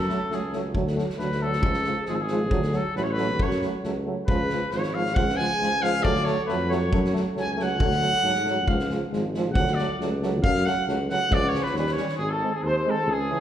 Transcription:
Already playing: trumpet A4
0.09 euphonium F#3, trombone A3, snare
0.29 tuba C#2, euphonium F#3, trombone A3, snare
0.34 trumpet G#4
0.52 euphonium F#3, trombone A3, snare
0.74 tuba D2, euphonium F#3, trombone A3, kick
0.87 snare
0.95 euphonium F#3, trombone A3, snare
1.10 snare
1.18 tuba D2, euphonium F#3, trombone A3, trumpet B4, snare
1.32 snare
1.41 euphonium F#3, trombone A3, trumpet A4
1.53 snare
1.62 tuba C#2, euphonium F3, trombone G#3, kick
1.74 snare
1.84 euphonium F3, trombone G#3, snare
2.06 tuba G#1, trombone G#3, trumpet G#4, snare
2.10 euphonium F3
2.15 trumpet A4
2.21 trumpet G#4
2.28 euphonium F3, trombone G#3, snare
2.50 tuba D2, euphonium F#3, trombone A3, kick
2.62 snare
2.73 euphonium F#3, trombone A3, trumpet A4, snare
2.95 tuba A1, euphonium F#3, trombone A3, trumpet B4, snare
3.03 trumpet C#5
3.12 trumpet B4
3.17 euphonium F#3, trombone A3, snare
3.39 tuba F#2, euphonium F#3, trombone A3, trumpet C#5, kick
3.51 snare
3.62 euphonium F#3, trombone A3, snare
3.83 tuba C#2, euphonium F#3, trombone A3, snare
4.06 euphonium F#3, trombone A3
4.27 tuba C#2, euphonium F3, trombone G#3, trumpet B4, kick
4.50 euphonium F3, trombone G#3, snare
4.71 tuba G#1, euphonium F3, trombone G#3, trumpet C#5, snare
4.83 snare
4.94 euphonium F3, trombone G#3, trumpet F5
5.06 snare
5.15 tuba C#2, euphonium F3, trombone G#3, trumpet F#5, kick
5.29 snare
5.36 euphonium F3, trombone G#3, trumpet G#5, snare
5.60 tuba C#2, euphonium F3, trombone G#3, snare
5.80 euphonium F3, trombone G#3, trumpet F5, snare
6.03 tuba D2, euphonium F#3, trombone A3, trumpet D5, kick
6.16 snare
6.24 trombone A3, trumpet C#5, snare
6.28 euphonium F#3
6.44 trombone A3, trumpet B4 C#5
6.48 tuba F2, euphonium F#3, snare
6.70 euphonium F#3, trombone A3, trumpet C#5, snare
6.91 tuba F#2, euphonium F#3, trombone A3, kick
7.05 snare
7.12 trombone A3, snare
7.17 euphonium F#3
7.34 tuba C#2, euphonium F#3, trombone A3, snare
7.40 trumpet G#5
7.53 trombone A3, trumpet G#5
7.59 euphonium F#3, trumpet F#5, snare
7.80 tuba D2, euphonium F#3, trombone A3, kick
7.91 snare
8.01 euphonium F#3, trombone A3, snare
8.13 snare
8.23 tuba G#2, euphonium F#3, trombone A3, snare
8.35 snare
8.44 trombone A3, snare
8.49 euphonium F#3
8.67 tuba C#2, trombone G#3, trumpet F5, kick
8.71 euphonium F3
8.79 snare
8.89 trombone G#3, snare
8.94 euphonium F3
9.12 tuba G#1, euphonium F3, trombone G#3, snare
9.34 euphonium F3, trombone G#3, snare
9.53 tuba D2, trumpet F#5, kick
9.57 euphonium F#3, trombone A3
9.67 snare
9.74 trumpet D5, snare
9.79 euphonium F#3, trombone A3
9.99 tuba C#2, euphonium F#3, trombone A3, snare
10.21 euphonium F#3, trombone A3, snare
10.42 tuba F#2, euphonium F#3, trombone A3, trumpet F5, kick
10.55 snare
10.65 euphonium F#3, trombone A3, trumpet F#5, snare
10.87 tuba C#2, euphonium F#3, trombone A3, snare
11.10 euphonium F#3, trombone A3, trumpet F#5, snare
11.30 tuba C#2, euphonium F3, trombone C#4, trumpet D5, kick
11.48 trumpet C#5
11.54 euphonium F3, trombone C#4, snare
11.63 trumpet B4, snare
11.73 tuba D#2, trombone C#4, snare
11.78 euphonium G3, trumpet B4
11.87 snare
11.92 trumpet C#5
11.97 euphonium G3, trombone C#4, snare
12.09 snare
12.18 tuba G#1, trumpet G#4
12.22 flugelhorn G#4
12.30 trumpet A4, flugelhorn A4
12.42 euphonium G#3, trombone C4
12.53 trumpet G#4, flugelhorn G#4
12.63 tuba D#2, trumpet C5
12.67 flugelhorn C5
12.74 trumpet C5, flugelhorn C5
12.86 euphonium G#3, trombone C4, trumpet A4
12.90 flugelhorn A4
13.06 tuba C#2, trumpet G#4
13.13 flugelhorn G#4
13.29 euphonium E3, trombone C#4

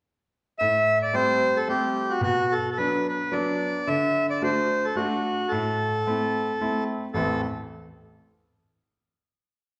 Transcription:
0.59 grand piano A2, accordion E5
1.02 accordion D5
1.13 grand piano G3 A3 C4, accordion C5
1.57 accordion A4
1.68 grand piano G3 A3 C4, accordion G4
2.10 accordion F#4
2.21 grand piano B2, accordion F#4
2.52 accordion A4
2.72 accordion A4
2.78 grand piano F#3 B3 D4, accordion B4
3.09 accordion B4
3.32 grand piano F#3 B3 D4, accordion D5
3.87 grand piano D3, accordion E5
4.30 accordion D5
4.41 grand piano A3 D4 F#4, accordion C5
4.85 accordion A4
4.96 grand piano A3 D4 F#4, accordion F#4
5.49 grand piano A2, accordion A4
6.07 grand piano A3 C4 E4
6.61 grand piano A3 C4 E4
7.14 grand piano A1 E2 E3 A3 C4 E4, accordion A4

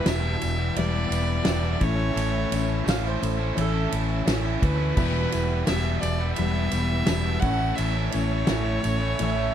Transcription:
Already playing: fiddle B4, tonewheel organ B4 G5 E6
0.03 fingered electric bass E1, overdriven electric guitar E2 B2 E3 G3 B3 E4, snare, ride
0.07 steel-string acoustic guitar G3 B3 E4, upright piano E4 G4 B4 E5, fiddle E5, tambourine
0.22 overdriven electric guitar E3 G3 B3 E4
0.38 muted overdriven electric guitar stroke, ride
0.42 fingered electric bass E1, steel-string acoustic guitar E3 G3 B3 E4, tambourine
0.56 overdriven electric guitar E3 G3 B3 E4
0.76 fingered electric bass E1, steel-string acoustic guitar E2 B2 E3 G3 B3 E4, upright piano E4 G4 B4 E5, fiddle D5, ride
0.91 overdriven electric guitar E3 G3 B3 E4
1.07 fingered electric bass E1, overdriven electric guitar E3 G3 B3 E4
1.12 ride, tambourine
1.43 fingered electric bass E1, overdriven electric guitar E2 B2 E3 G3 B3 E4, steel-string acoustic guitar E3 G3, upright piano E4, snare, ride
1.47 steel-string acoustic guitar B3 E4, upright piano G4 B4 E5, tambourine
1.61 overdriven electric guitar E3 G3 B3 E4
1.78 fingered electric bass A1, overdriven electric guitar A2 E3 A3 C#4 E4, steel-string acoustic guitar E3 A3 C#4 E4, kick, ride
1.82 steel-string acoustic guitar A2, tonewheel organ C#4 A5, upright piano E4 A4 C#5 E5, fiddle C#5, tambourine
1.96 overdriven electric guitar A3 C#4 E4
2.12 fingered electric bass A1, overdriven electric guitar A2 E3 A3 C#4 E4
2.17 ride, tambourine
2.32 overdriven electric guitar A3 C#4 E4
2.50 fingered electric bass A1, steel-string acoustic guitar A3 C#4 E4, upright piano E4 A4 C#5 E5, ride, tambourine
2.84 fingered electric bass A1, overdriven electric guitar A2 E3 A3 C#4 E4, steel-string acoustic guitar E3 A3 C#4, upright piano C#4 E4 A4 E5, tambourine
2.88 steel-string acoustic guitar E4, mandolin F5, snare, ride
3.03 overdriven electric guitar A3 C#4 E4, mandolin C5
3.21 fingered electric bass A1, steel-string acoustic guitar A3 C#4 E4, muted overdriven electric guitar stroke, ride, tambourine
3.37 overdriven electric guitar A3 C#4 E4
3.55 fingered electric bass A1, steel-string acoustic guitar A2 E3 A3 C#4 E4, upright piano E4 A4 C#5 E5, ride
3.61 mandolin A4
3.72 overdriven electric guitar A3 C#4 E4
3.90 fingered electric bass A1, overdriven electric guitar E3 A3 C#4 E4, ride
4.25 fingered electric bass A1, overdriven electric guitar A2 E3 A3 C#4 E4, steel-string acoustic guitar E3 A3 C#4 E4, upright piano E4 A4 C#5 E5, snare, ride, tambourine
4.43 overdriven electric guitar A3 C#4 E4
4.60 fingered electric bass D2, overdriven electric guitar E3 A3 C#4 E4, fiddle B4, kick, ride, tambourine
4.76 overdriven electric guitar A3 C#4 E4
4.94 fingered electric bass E1, overdriven electric guitar E2 B2 E3 G3 B3 E4, steel-string acoustic guitar E2 B2 E3, upright piano E4 G4 B4 E5, kick, crash, tambourine
4.98 steel-string acoustic guitar G3 B3 E4, tonewheel organ B4 G5 E6
5.14 overdriven electric guitar E3 G3 B3 E4
5.31 fingered electric bass E1, steel-string acoustic guitar E3 G3 B3 E4, upright piano E4 G4 B4 E5, ride, tambourine
5.65 overdriven electric guitar E2 B2 E3 G3 B3 E4, steel-string acoustic guitar E3 G3 B3, upright piano E4 G4 B4 E5, fiddle E5, snare, ride, tambourine
5.69 fingered electric bass E1, steel-string acoustic guitar E4
5.83 overdriven electric guitar E3 G3 B3 E4
6.00 fingered electric bass E1, steel-string acoustic guitar G3 B3 E4, fiddle D5, muted overdriven electric guitar stroke, ride, tambourine
6.04 steel-string acoustic guitar E3
6.18 overdriven electric guitar E3 G3 B3 E4
6.34 steel-string acoustic guitar E2 B2 E3, fiddle E5, ride
6.38 fingered electric bass E1, steel-string acoustic guitar G3 B3 E4, upright piano E4 G4 B4 E5
6.53 overdriven electric guitar E3 G3 B3 E4
6.70 fingered electric bass E1, overdriven electric guitar E3 G3 B3 E4, ride, tambourine
7.06 fingered electric bass E1, overdriven electric guitar E2 B2 E3 G3 B3 E4, steel-string acoustic guitar E3 G3 B3 E4, upright piano E4 G4 B4 E5, snare, ride, tambourine
7.24 overdriven electric guitar E3 G3 B3 E4
7.40 fingered electric bass A1, overdriven electric guitar A2 E3 A3, steel-string acoustic guitar A3 C#4 E4, upright piano C#5 E5, fiddle F#5, kick, ride
7.44 steel-string acoustic guitar A2 E3, overdriven electric guitar C#4 E4, upright piano E4 A4, tonewheel organ C#5 A5, tambourine
7.60 overdriven electric guitar A3 C#4 E4
7.75 fingered electric bass A1, overdriven electric guitar A2 E3 A3 C#4 E4, fiddle E5, ride, tambourine
7.95 overdriven electric guitar A3 C#4 E4
8.10 steel-string acoustic guitar A3 C#4 E4, upright piano E4 E5, fiddle C#5, ride
8.14 fingered electric bass A1, upright piano A4 C#5, tambourine
8.47 fingered electric bass A1, overdriven electric guitar A2 E3 A3 C#4 E4, steel-string acoustic guitar E3 A3 C#4 E4, upright piano E4 A4 C#5 E5, snare, ride, tambourine
8.65 overdriven electric guitar A3 C#4 E4
8.82 fingered electric bass A1, steel-string acoustic guitar A3 C#4 E4, muted overdriven electric guitar stroke, ride, tambourine
8.99 overdriven electric guitar A3 C#4 E4
9.19 fingered electric bass A1, steel-string acoustic guitar A2 E3 A3 C#4 E4, upright piano E4 A4 C#5 E5, mandolin E5, ride, tambourine
9.35 overdriven electric guitar A3 C#4 E4

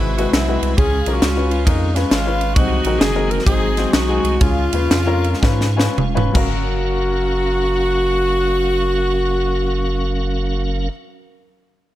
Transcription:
Already playing: sub bass G#1, upright piano G#2, tonewheel organ C3 G#3 E4 F#4 B4, saxophone section E4 F#4 B4
0.16 upright piano G#3 C4 E4 F#4 B4, saxophone section F#4, ride
0.32 sub bass B1, saxophone section B3 C4 E4, snare, ride
0.48 upright piano G#3 C4 E4 F#4 B4
0.62 sub bass C2, ride
0.76 sub bass C#2, upright piano C#3 C#4 F4 G#4, tonewheel organ G#3 C#4 F5, saxophone section C#4 F4 G#4, kick, ride
1.06 sub bass B1, upright piano C#4 F4 A#4, ride
1.13 saxophone section C#4 F#4
1.22 sub bass C#2, snare, ride
1.36 upright piano C#4 F4 B4
1.50 saxophone section F4, ride
1.64 sub bass F2, saxophone section G#3 D#4, upright piano C#4 F4 A#4, kick, ride
1.94 saxophone section C#4, upright piano C#4 F4 B4, snare, ride
2.10 sub bass G#1, saxophone section G#3 C#4 F4, snare, ride
2.26 upright piano C#4 F4 B4
2.41 ride
2.54 sub bass C2, upright piano C3 G#3 C4 D#4 F#4 C5, tonewheel organ D#3 F#3 G#3 C4 F#4, saxophone section D#4 F#4, kick, ride
2.84 sub bass A#1, upright piano G#3 C4 D#4 F#4 A#4, ride
2.99 sub bass F#1, saxophone section G#4, snare, ride
3.15 upright piano G#3 C4 D#4 F#4 A#4
3.30 saxophone section A#4, ride
3.39 snare
3.46 sub bass G#1, upright piano G#3 C4 D#4 F#4 C5, saxophone section D#4 G#4, kick, ride
3.77 upright piano G#3 C4 D#4 F#4 C5, snare, ride
3.92 sub bass B1, saxophone section D#4 F#4, snare, ride
4.08 upright piano G#3 C4 D#4 F#4 G#4
4.24 sub bass C2, ride
4.41 sub bass C#2, upright piano C#3 C#4 F4 G#4, saxophone section G#3 C#4 F4, tonewheel organ G#3 C#4 F4, kick, ride
4.73 sub bass D#2, upright piano C#4 F4 B4, ride
4.90 sub bass F2, snare, ride
5.06 upright piano C#4 F4 A#4
5.24 ride
5.34 snare
5.42 sub bass G#2, upright piano C#4 F4 B4, kick, snare
5.61 snare
5.77 upright piano C#4 F4 B4 G#5, snare
5.87 upright piano G#5
5.97 sub bass E1, upright piano F5, mid tom
6.15 upright piano C#4 F4 B4, floor tom
6.32 sub bass F#1, upright piano F#2 F#3 C#4 F5, tonewheel organ F#3 C#4 A#4 F5, saxophone section F#4, kick, crash
6.36 upright piano A#4

